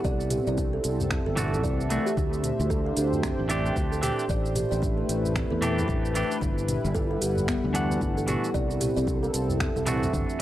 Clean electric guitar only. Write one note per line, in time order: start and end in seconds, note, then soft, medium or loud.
1.36 1.87 E3 loud
1.36 1.88 A3 medium
1.36 1.88 D4 medium
1.36 1.88 F#4 loud
1.90 2.11 E3 medium
1.90 2.11 A3 medium
1.90 2.12 D4 medium
1.90 2.12 F#4 medium
3.49 4.00 E3 medium
3.49 4.00 A3 medium
3.49 4.00 D4 medium
3.49 4.01 G4 loud
4.02 4.23 E3 loud
4.02 4.24 A3 medium
4.02 4.24 D4 medium
4.02 4.24 G4 loud
5.62 6.12 E3 medium
5.62 6.13 A3 medium
5.62 6.13 D4 medium
5.62 6.13 G4 loud
6.14 6.36 E3 medium
6.14 6.36 A3 medium
6.14 6.37 D4 medium
6.14 6.37 G4 loud
7.74 8.25 E3 loud
7.74 8.25 A3 medium
7.74 8.25 D4 medium
7.74 8.26 F#5 loud
8.27 8.48 E3 medium
8.27 8.49 A3 medium
8.27 8.49 D4 medium
8.27 8.49 F#4 loud
9.87 10.37 E3 medium
9.87 10.38 A3 medium
9.87 10.38 D4 medium
9.87 10.38 F#4 loud